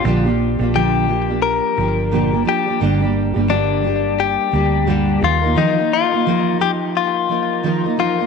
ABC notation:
X:1
M:4/4
L:1/16
Q:"Swing 16ths" 1/4=87
K:Eblyd
V:1 name="Clean electric guitar"
z4 G4 B6 G2 | z4 D4 G6 F2 | E2 F4 G2 F6 F2 |]
V:2 name="Steel-string acoustic guitar"
[B,,D,F,B,DG] [F,B,DG]2 [F,B,DG] [B,,D,F,B,DG]2 [F,B,DG] [F,B,DG]3 [F,B,DG]2 [B,,D,F,B,DG] [F,B,DG] [F,B,DG] [F,B,DG] | [G,,D,G,B,DG] [G,B,DG]2 [G,B,DG] [G,,D,G,B,DG]2 [G,B,DG]4 [G,B,DG]2 [G,,D,G,B,DG]2 [F,B,EB] [B,EB] | [E,F,B,EB] [B,EB]2 [B,EB] [E,F,B,EB]2 [F,B,EB]4 [F,B,EB]2 [E,F,B,EB] [B,EB] [F,B,EB] [B,EB] |]
V:3 name="Fingered electric bass" clef=bass
B,,,3 B,,,6 z G,,,4 z2 | G,,,3 G,,,6 z D,,4 E,,2 | z16 |]